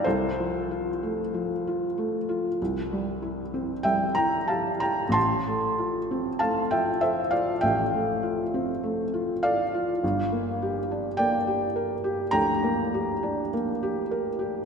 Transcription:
\new Staff \with { instrumentName = "Felt piano" } { \time 4/4 \key f \major \tempo 4 = 50 << { <a' c''>2. <e'' g''>16 <g'' bes''>16 <f'' a''>16 <g'' bes''>16 | <a'' c'''>4 <f'' a''>16 <e'' g''>16 <c'' e''>16 <d'' f''>16 <e'' g''>4. <d'' f''>8~ | <d'' f''>4 <d'' g''>4 <g'' bes''>4 r4 | } \\ { c,16 f16 f'16 a16 f16 f'16 a16 f'16 c,16 g16 e'16 c'16 g16 e'16 g'16 e'16 | a,,16 a16 f'16 c'16 a16 f'16 a'16 f'16 a,,16 a16 f'16 c'16 a16 f'16 a'16 f'16 | g,,16 bes16 g'16 d'16 bes16 g'16 bes'16 g'16 d,16 bes16 g'16 d'16 bes16 g'16 bes'16 g'16 | } >> }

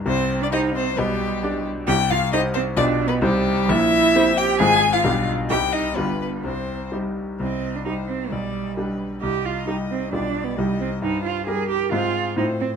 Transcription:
<<
  \new Staff \with { instrumentName = "Violin" } { \time 2/4 \key c \minor \tempo 4 = 132 c''8. d''16 ees''8 c''8 | g'4. r8 | g''8 f''8 ees''8 c''8 | \tuplet 3/2 { d''4 b'8 } g'4 |
e''4. g''8 | aes''8. f''8. r8 | g''8 ees''8 b'8 b'8 | c''4 r4 |
ees''4 c''4 | d''4 b'4 | ees''2 | d''4 ees''4 |
\key f \dorian c''4 bes'4 | aes'4 c''4 | }
  \new Staff \with { instrumentName = "Cello" } { \time 2/4 \key c \minor c'8. d'16 ees'8 c'8 | g4. r8 | g'8 f'8 ees'8 c'8 | \tuplet 3/2 { d'4 b8 } g4 |
e'4. g'8 | aes'8. f'8. r8 | g'8 ees'8 b8 b8 | c'4 r4 |
c'8. d'16 ees'8 c'8 | g4. r8 | g'8 f'8 ees'8 c'8 | \tuplet 3/2 { d'4 b8 } g8 c'8 |
\key f \dorian ees'8 f'8 aes'8 g'8 | f'4 ees'8 c'8 | }
  \new Staff \with { instrumentName = "Grand piano" } { \time 2/4 \key c \minor <c, c>4 <ees' g' c''>4 | <b,, b,>4 <d' g' d''>4 | <c, c>4 <ees' g' c''>4 | <b,, b, f' g' d''>4 <c, c ees' g' c''>4 |
<bes,, bes,>4 <c' g' c''>4 | <aes,, aes, c' f' aes'>4 <b,, b, g d' g'>4 | <c, c g ees' g'>4 <g,, g, g f' g'>4 | <c, c>4 <g ees' g'>4 |
c,4 <g ees' g'>4 | b,,4 <g d' g'>4 | c,4 <g ees' g'>4 | <b,, g f' g'>4 <c, g ees' g'>4 |
\key f \dorian g,4 <g g' bes'>4 | <aes, c' f' c''>4 <a, c' f' c''>4 | }
>>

